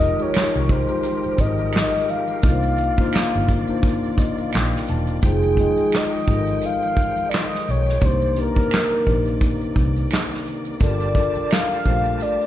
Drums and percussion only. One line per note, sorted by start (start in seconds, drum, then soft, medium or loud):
0.19 maracas soft
0.34 finger snap medium
0.34 snare loud
0.34 clap medium
0.34 closed hi-hat medium
0.34 maracas medium
0.54 maracas soft
0.69 kick medium
0.69 closed hi-hat medium
0.88 maracas soft
1.03 closed hi-hat medium
1.03 maracas medium
1.23 maracas soft
1.38 kick medium
1.38 closed hi-hat medium
1.38 maracas soft
1.58 maracas soft
1.73 finger snap medium
1.73 snare loud
1.73 closed hi-hat medium
1.73 maracas medium
1.77 clap medium
1.94 snare soft
1.94 maracas soft
2.09 closed hi-hat medium
2.27 maracas soft
2.42 kick loud
2.42 closed hi-hat medium
2.42 maracas medium
2.63 maracas soft
2.77 closed hi-hat medium
2.77 maracas soft
2.97 kick medium
2.97 maracas soft
3.13 finger snap medium
3.13 snare loud
3.13 clap medium
3.13 closed hi-hat medium
3.13 maracas medium
3.33 maracas soft
3.49 kick medium
3.49 closed hi-hat medium
3.67 maracas soft
3.82 kick loud
3.82 closed hi-hat medium
3.82 maracas medium
4.03 maracas soft
4.18 kick loud
4.18 closed hi-hat medium
4.38 maracas soft
4.52 finger snap medium
4.52 snare loud
4.52 closed hi-hat medium
4.52 maracas medium
4.56 clap medium
4.74 snare soft
4.74 maracas soft
4.87 closed hi-hat medium
4.87 maracas soft
5.07 closed hi-hat soft
5.07 maracas soft
5.22 kick loud
5.22 closed hi-hat medium
5.22 maracas medium
5.42 maracas soft
5.57 kick medium
5.57 closed hi-hat medium
5.77 closed hi-hat soft
5.77 maracas soft
5.92 finger snap medium
5.92 snare loud
5.92 clap medium
5.92 closed hi-hat medium
5.92 maracas medium
6.12 maracas soft
6.28 kick medium
6.28 closed hi-hat medium
6.47 closed hi-hat soft
6.47 maracas soft
6.61 closed hi-hat medium
6.61 maracas medium
6.82 maracas soft
6.97 kick medium
6.97 closed hi-hat medium
7.17 maracas soft
7.31 finger snap medium
7.31 snare loud
7.31 closed hi-hat medium
7.31 maracas medium
7.35 clap medium
7.53 snare soft
7.53 maracas soft
7.68 closed hi-hat medium
7.86 snare soft
7.86 maracas soft
8.01 kick loud
8.01 closed hi-hat medium
8.01 maracas medium
8.21 maracas soft
8.36 closed hi-hat medium
8.56 kick medium
8.56 maracas soft
8.71 finger snap medium
8.71 snare loud
8.71 clap medium
8.71 closed hi-hat medium
8.71 maracas medium
8.91 maracas soft
9.07 kick medium
9.07 closed hi-hat medium
9.26 closed hi-hat soft
9.26 maracas soft
9.41 kick medium
9.41 closed hi-hat medium
9.41 maracas medium
9.61 maracas soft
9.76 kick medium
9.76 closed hi-hat medium
9.96 closed hi-hat soft
9.96 maracas soft
10.10 finger snap medium
10.10 snare loud
10.10 closed hi-hat medium
10.10 maracas medium
10.14 clap medium
10.32 snare soft
10.32 maracas soft
10.46 closed hi-hat medium
10.65 closed hi-hat soft
10.65 maracas soft
10.80 kick loud
10.80 closed hi-hat medium
10.80 maracas medium
11.00 maracas soft
11.15 kick medium
11.15 closed hi-hat medium
11.35 maracas soft
11.50 finger snap medium
11.50 snare loud
11.50 clap medium
11.50 closed hi-hat medium
11.50 maracas medium
11.71 maracas soft
11.86 kick medium
11.86 closed hi-hat medium
12.05 maracas soft
12.20 closed hi-hat medium
12.20 maracas medium
12.41 maracas soft